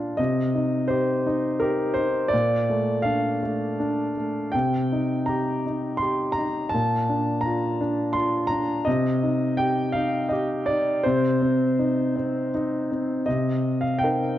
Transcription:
Already playing: A#2 D4 F4 D5 F5
0.17 C3 D#5
0.55 D#4
0.88 G4 C5
1.26 D#4
1.59 G4 A#4
1.94 C5
1.98 D#4
2.28 D5
2.33 A#2
2.70 A3
3.02 D4 F5
3.43 A3
3.80 D4
4.17 A3
4.52 C3 G5
4.92 D#4
5.26 G4 A#5
5.66 D#4
5.97 C6
6.02 G4
6.32 A#5
6.38 D#4
6.69 A5
6.74 A#2
7.09 D4
7.41 A#5
7.45 F4
7.81 D4
8.13 F4 C6
8.47 A#5
8.51 D4
8.85 C3 D#5
9.23 D#4
9.57 G4 G5
9.92 D#4 F5
10.29 G4 D#5
10.66 D#4 D5
11.03 C3 C5
11.42 C4
11.79 D#4
12.16 C4
12.54 D#4
12.91 C4
13.26 C3 D#5
13.81 F5
13.99 G5
14.03 C4 D#4 A#4

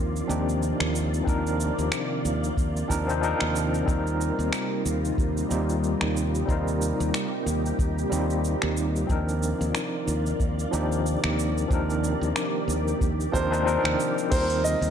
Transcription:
Already playing: D#2 C3 D#3 F3 A#3 C4 D4 D#4 F4 A#4 D5
0.16 cabasa
0.27 D#2 F3 C4 D4 D#4 G4, cabasa
0.49 cabasa
0.63 cabasa
0.80 D#2, finger snap
0.96 cabasa
1.14 cabasa
1.23 F3 C4 D4, kick
1.27 D#2 D#4 A#4, cabasa
1.47 cabasa
1.60 cabasa
1.78 D#2, cabasa
1.92 finger snap, cabasa
2.25 D#2, cabasa
2.44 cabasa
2.57 D#2, kick, cabasa
2.77 cabasa
2.88 D#2 F3 C4 D4 D#4 A#4, kick, cabasa
3.07 F3 C4 D4 D#4 C5, cabasa
3.21 F3 C4 D4 D#4 A#4, cabasa
3.40 D#2, finger snap
3.56 cabasa
3.74 cabasa
3.84 D#2 G3 C4 D#4, kick
3.89 F4 A#4, cabasa
4.07 cabasa
4.21 cabasa
4.39 D#2, cabasa
4.53 finger snap, cabasa
4.85 D#2, cabasa
5.05 cabasa
5.18 D#2, kick, cabasa
5.37 cabasa
5.49 D#2 G3 C4 D#4 F4 G4, cabasa
5.70 cabasa
5.84 cabasa
6.01 D#2, finger snap
6.17 cabasa
6.35 cabasa
6.45 D#2 G3 C4 D#4 G4, kick
6.50 F4 A#4, cabasa
6.68 cabasa
6.82 cabasa
7.00 D#2, cabasa
7.14 finger snap, cabasa
7.46 D#2, cabasa
7.66 cabasa
7.79 D#2, kick, cabasa
7.99 cabasa
8.10 D#2 G3 C4 D#4 F4 G4, cabasa
8.30 cabasa
8.45 cabasa
8.62 D#2, finger snap
8.77 cabasa
8.96 cabasa
9.06 D#2 C3 D#3 F3 C4 D4 F4 D5, kick, cabasa
9.10 A#3 D#4 A#4
9.29 cabasa
9.43 cabasa
9.61 D#2, cabasa
9.75 finger snap, cabasa
10.08 D#2, cabasa
10.26 cabasa
10.40 D#2, kick, cabasa
10.59 cabasa
10.71 D#2 F3 C4 D4 D#4 G4, cabasa
10.92 cabasa
11.06 cabasa
11.24 D#2, finger snap
11.39 cabasa
11.58 cabasa
11.68 D#2 F3 C4 D4 G4, kick, cabasa
11.73 D#4 A#4
11.90 cabasa
12.04 cabasa
12.21 D#2, cabasa
12.36 finger snap, cabasa
12.68 D#2, cabasa
12.88 cabasa
13.01 D#2, kick, cabasa
13.21 cabasa
13.32 D#2 F3 C4 D4 D#4 A#4 C5, kick, cabasa
13.50 F3 C4 D4 D#4 C5, cabasa
13.65 F3 C4 D4 D#4 A#4, cabasa
13.84 D#2, finger snap
14.00 cabasa
14.18 cabasa
14.29 D#2 C3 G3 A#3 C4 D#4 F4 C5, kick, open hi-hat, crash, cabasa
14.33 F4 A#4
14.50 open hi-hat
14.64 D#5, cabasa
14.81 D#2, open hi-hat, cabasa

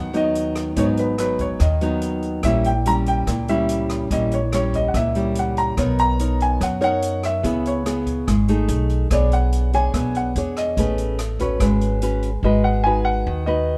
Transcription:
Already playing: D#2 D#3 F#3 B3 D#4 F#5
0.13 F#3 B3 D#4 D#5, closed hi-hat
0.35 closed hi-hat
0.55 cross-stick, closed hi-hat
0.76 G#1 G#2 F#3 B3 D#4 C#5, kick, closed hi-hat
0.97 B4, closed hi-hat
1.18 F#3 B3 D#4 B4, cross-stick, closed hi-hat
1.39 C#5, kick, closed hi-hat
1.59 D#2 D#3 D#5, kick, cross-stick, closed hi-hat
1.81 F#3 B3 D#4, closed hi-hat
2.02 closed hi-hat
2.22 closed hi-hat
2.43 A#1 A#2 G3 C#4 E4 E5, kick, cross-stick, closed hi-hat
2.64 G5, closed hi-hat
2.86 G3 C#4 E4 A#5, closed hi-hat
3.06 G5, closed hi-hat
3.27 C#2 A#2, kick, cross-stick, closed hi-hat
3.48 G3 C#4 E4 E5, closed hi-hat
3.69 closed hi-hat
3.89 cross-stick, closed hi-hat
4.11 A#1 A#2 G3 C#4 E4 D#5, kick, closed hi-hat
4.31 C#5, closed hi-hat
4.52 G3 C#4 E4 C#5, cross-stick, closed hi-hat
4.73 D#5, kick, closed hi-hat
4.88 F#5
4.94 C#2 A#2 E5, kick, cross-stick, closed hi-hat
5.15 G3 C#4 E4, closed hi-hat
5.35 F#5, closed hi-hat
5.57 A#5, closed hi-hat
5.77 B1 B3 D#4 A#4 C#5, kick, cross-stick, closed hi-hat
5.98 A#5, closed hi-hat
6.19 D#4 A#4 C#5, closed hi-hat
6.40 G#5, closed hi-hat
6.61 F#2 F#3 F#5, kick, cross-stick, closed hi-hat
6.81 D#4 A#4 C#5 F#5, closed hi-hat
7.02 closed hi-hat
7.23 E5, cross-stick, closed hi-hat
7.43 C#2 C#3 B3 E4 G#4, kick, closed hi-hat
7.65 C#5, closed hi-hat
7.86 B3 E4 G#4, cross-stick, closed hi-hat
8.07 kick, closed hi-hat
8.27 G#1 G#3, kick, cross-stick, closed hi-hat
8.48 A3 D#4 G#4, closed hi-hat
8.68 B1, closed hi-hat
8.89 closed hi-hat
9.10 B1 B3 D4 G#4 C#5 D5, kick, cross-stick, closed hi-hat
9.32 F#5, closed hi-hat
9.52 closed hi-hat
9.73 D4 G#4 C#5 G#5, closed hi-hat
9.94 B1 B3, kick, cross-stick, closed hi-hat
10.15 F#5, closed hi-hat
10.36 E2 D4 G#4 C#5, closed hi-hat
10.57 D#5, cross-stick, closed hi-hat
10.77 A1 A3 C#4 G#4 B4, kick, closed hi-hat
10.98 closed hi-hat
11.19 cross-stick, closed hi-hat
11.39 C#4 F#4 B4 C#5, kick, closed hi-hat
11.60 G#1 G#3 B4, kick, cross-stick, closed hi-hat
11.81 closed hi-hat
12.02 C#4 F#4 B4, closed hi-hat
12.23 closed hi-hat
12.43 G#1 G#3 D#4 F#4 B4 D#5
12.64 F#5
12.84 D#4 F#4 B4 G#5
13.05 F#5
13.27 D#2 D#3
13.46 D#4 F#4 B4 D#5

